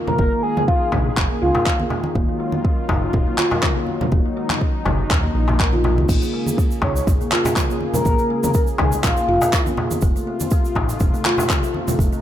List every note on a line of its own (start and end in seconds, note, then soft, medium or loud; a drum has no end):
0.00 6.05 D#3 medium
0.00 0.17 F#3 medium
0.00 2.12 A#3 medium
0.07 0.42 A#4 medium
0.07 mid tom medium
0.07 low conga medium
0.18 0.28 F#1 medium
0.18 0.31 A#3 medium
0.18 2.14 G#4 medium
0.18 kick loud
0.18 high conga medium
0.32 0.42 A#3 medium
0.43 0.50 G#3 medium
0.43 0.63 G#4 medium
0.57 mid tom medium
0.57 high conga medium
0.68 0.75 C#4 loud
0.68 0.88 F4 medium
0.68 kick loud
0.92 1.10 A#1 loud
0.92 1.05 D#4 loud
0.92 kick medium
0.92 mid tom medium
0.92 darbuka ka medium
0.92 darbuka tek medium
0.92 high conga medium
0.92 low conga loud
1.17 1.26 F#1 medium
1.17 1.24 C#4 medium
1.17 kick loud
1.17 clap medium
1.17 darbuka tek medium
1.17 low conga loud
1.30 1.41 A#3 medium
1.42 1.51 C#2 medium
1.42 1.49 F4 medium
1.42 1.80 F4 medium
1.55 1.65 A#4 medium
1.55 darbuka ka medium
1.55 darbuka tek medium
1.55 low conga medium
1.66 kick loud
1.66 clap medium
1.66 high conga medium
1.79 1.90 A#3 medium
1.79 high conga medium
1.90 darbuka tek medium
1.90 low conga medium
2.04 high conga medium
2.15 2.24 D#1 medium
2.15 6.05 F#3 medium
2.15 2.27 A#3 medium
2.15 4.10 F4 medium
2.15 kick loud
2.15 high conga medium
2.29 2.39 A#3 medium
2.40 2.47 G#3 medium
2.52 high conga medium
2.64 2.72 C#4 medium
2.64 kick loud
2.89 3.07 F#1 medium
2.89 3.01 D#4 loud
2.89 kick medium
2.89 darbuka ka medium
2.89 darbuka tek medium
2.89 low conga medium
3.13 3.23 D#1 medium
3.13 3.21 C#4 medium
3.13 kick loud
3.13 low conga loud
3.27 3.37 A#3 medium
3.38 3.46 F4 medium
3.38 clap medium
3.38 high conga soft
3.51 3.62 A#4 medium
3.51 darbuka ka medium
3.51 darbuka tek medium
3.51 low conga medium
3.63 3.76 C#4 medium
3.63 kick loud
3.63 clap medium
3.63 mid tom medium
3.63 darbuka ka medium
3.76 3.86 A#3 medium
3.87 high conga medium
4.01 mid tom medium
4.01 low conga medium
4.12 4.21 D#1 medium
4.12 4.24 A#3 medium
4.12 6.07 D#4 medium
4.12 kick loud
4.12 high conga medium
4.26 4.36 A#3 medium
4.37 4.44 G#3 medium
4.50 clap medium
4.50 mid tom medium
4.50 high conga medium
4.61 4.69 C#4 loud
4.61 kick loud
4.85 5.03 F#1 loud
4.85 4.98 D#4 medium
4.85 kick medium
4.85 mid tom loud
4.85 darbuka ka medium
4.85 darbuka tek medium
4.85 high conga medium
4.85 low conga medium
5.10 5.28 D#2 medium
5.10 5.18 C#4 medium
5.10 kick loud
5.10 clap medium
5.10 darbuka tek medium
5.10 low conga loud
5.24 5.34 A#3 medium
5.35 5.99 A#1 medium
5.35 5.42 A#3 medium
5.48 5.59 A#3 medium
5.48 darbuka ka medium
5.48 darbuka tek medium
5.48 low conga medium
5.60 5.72 A#4 medium
5.60 kick loud
5.60 clap medium
5.60 high conga medium
5.73 5.83 F4 loud
5.73 high conga medium
5.84 darbuka tek medium
5.84 low conga medium
5.98 6.05 C#2 medium
5.98 high conga medium
6.08 6.18 A#1 medium
6.08 9.99 C#3 medium
6.08 6.21 A#3 medium
6.08 9.98 A#3 medium
6.08 9.99 G#4 medium
6.08 kick loud
6.08 crash medium
6.08 high conga medium
6.08 shaker medium
6.22 6.32 A#3 medium
6.22 shaker soft
6.33 6.41 G#3 medium
6.47 high conga medium
6.47 shaker medium
6.58 6.65 C#4 loud
6.58 kick loud
6.58 shaker medium
6.71 shaker soft
6.82 7.00 C#2 loud
6.82 6.95 D#4 loud
6.82 6.92 C#5 medium
6.82 kick medium
6.82 darbuka ka medium
6.82 darbuka tek medium
6.82 low conga loud
6.96 7.03 C#5 medium
6.96 shaker medium
7.07 7.16 A#1 medium
7.07 7.15 C#4 medium
7.07 kick loud
7.07 low conga loud
7.07 shaker medium
7.21 7.31 A#3 medium
7.21 shaker soft
7.32 7.39 F4 medium
7.32 clap medium
7.32 high conga soft
7.45 7.55 A#4 medium
7.45 darbuka ka medium
7.45 darbuka tek medium
7.45 low conga medium
7.45 shaker medium
7.56 7.69 C#4 medium
7.56 kick loud
7.56 clap medium
7.56 mid tom medium
7.56 darbuka ka medium
7.56 shaker medium
7.70 7.80 A#3 medium
7.70 shaker soft
7.81 high conga medium
7.94 8.41 A#4 loud
7.94 mid tom medium
7.94 low conga medium
7.94 shaker medium
8.05 8.15 A#1 medium
8.05 8.18 A#3 medium
8.05 kick loud
8.05 high conga medium
8.05 shaker medium
8.18 8.29 A#3 medium
8.18 shaker soft
8.30 8.37 G#3 medium
8.43 8.51 A#4 medium
8.43 mid tom medium
8.43 high conga medium
8.43 shaker medium
8.54 8.62 C#4 loud
8.54 8.63 A#4 medium
8.54 kick loud
8.54 shaker medium
8.67 shaker soft
8.78 8.97 C#2 loud
8.78 8.91 D#4 loud
8.78 8.99 G#4 loud
8.78 kick medium
8.78 mid tom medium
8.78 darbuka ka medium
8.78 darbuka tek medium
8.78 high conga medium
8.78 low conga loud
8.92 shaker medium
9.03 9.13 A#1 medium
9.03 9.11 C#4 medium
9.03 9.73 F4 loud
9.03 kick loud
9.03 clap medium
9.03 darbuka tek medium
9.03 low conga loud
9.03 shaker medium
9.17 9.28 A#3 medium
9.17 shaker soft
9.28 9.37 F1 medium
9.28 9.36 F4 medium
9.42 9.52 A#4 medium
9.42 darbuka ka medium
9.42 darbuka tek medium
9.42 low conga medium
9.42 shaker medium
9.53 kick loud
9.53 clap medium
9.53 high conga medium
9.53 shaker medium
9.66 9.77 A#3 medium
9.66 high conga medium
9.66 shaker soft
9.77 darbuka tek medium
9.77 low conga medium
9.91 high conga loud
9.91 shaker medium
10.01 10.11 F1 medium
10.01 12.21 C3 medium
10.01 10.14 A3 medium
10.01 12.21 A3 medium
10.01 11.97 F4 medium
10.01 kick loud
10.01 high conga medium
10.01 shaker medium
10.16 10.26 A3 medium
10.16 shaker soft
10.27 10.34 A3 medium
10.40 high conga medium
10.40 shaker medium
10.51 10.59 C4 medium
10.51 kick loud
10.51 shaker medium
10.65 shaker soft
10.75 10.93 A1 loud
10.75 10.88 D#4 loud
10.75 kick medium
10.75 darbuka ka medium
10.75 darbuka tek medium
10.75 low conga medium
10.89 shaker medium
11.00 11.10 F1 medium
11.00 11.08 C4 medium
11.00 kick loud
11.00 low conga loud
11.00 shaker medium
11.14 11.24 A3 medium
11.14 shaker soft
11.25 11.32 F4 medium
11.25 clap loud
11.25 high conga medium
11.38 11.49 A4 medium
11.38 darbuka ka medium
11.38 darbuka tek medium
11.38 low conga medium
11.38 shaker medium
11.50 11.63 C4 medium
11.50 kick loud
11.50 clap medium
11.50 mid tom medium
11.50 darbuka ka medium
11.50 shaker medium
11.63 11.73 A3 medium
11.63 shaker soft
11.74 high conga medium
11.88 mid tom medium
11.88 low conga loud
11.88 shaker medium
11.98 12.08 F1 medium
11.98 12.11 A3 medium
11.98 12.21 D#4 medium
11.98 kick loud
11.98 high conga medium
11.98 shaker medium
12.13 12.21 A3 medium
12.13 shaker soft